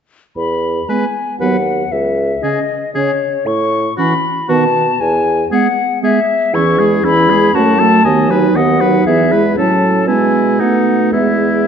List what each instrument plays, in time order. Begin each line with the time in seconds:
0.36 bassoon E2, flute B5
0.89 french horn G#3, clarinet B3, oboe B4, flute G#5
1.40 bassoon D#2, french horn F#3, clarinet B3, oboe B4, flute F#5
1.92 bassoon C#2, flute E5
2.43 french horn C#3, clarinet C#4, oboe G#4, flute D#5
2.95 french horn C#3, clarinet C#4, oboe G#4, flute C#5
3.46 bassoon A2, flute C#6
3.97 french horn E3, clarinet C#4, oboe F#4, flute B5
4.49 bassoon B2, french horn D#3, clarinet B3, oboe F#4, flute A5
5.01 bassoon E2, flute G#5
5.51 french horn G#3, clarinet B3, oboe G#4, flute F#5
6.02 french horn G#3, clarinet B3, oboe G#4, flute E5
6.54 bassoon E2, french horn E3, clarinet C#4, oboe E4, flute C#6
6.79 french horn G#3, clarinet E4, oboe G#4
7.04 bassoon E2, french horn E3, clarinet C#4, oboe E4, flute B5
7.29 french horn G#3, clarinet E4, oboe G#4
7.54 bassoon F#2, french horn A3, clarinet C#4, oboe F#4, flute A5
7.79 french horn F#3, clarinet A3, oboe A4
8.04 bassoon D#2, french horn D#3, clarinet B3, oboe D#5, flute G#5
8.30 french horn F#3, clarinet D#4, oboe B4
8.56 bassoon D#2, french horn D#3, clarinet B3, oboe D#5, flute F#5
8.81 french horn F#3, clarinet D#4, oboe B4
9.07 bassoon E2, french horn E3, clarinet B3, oboe G#4, flute E5
9.32 french horn G#3, clarinet E4, oboe B4
9.57 bassoon A2, french horn F#3, clarinet C#4, oboe A4, flute A5
10.08 bassoon B2, french horn G#3, clarinet B3, oboe E4, flute G#5
10.60 bassoon B2, french horn A3, clarinet B3, oboe D#4, flute F#5
11.13 bassoon E2, french horn G#3, clarinet B3, oboe E4, flute E5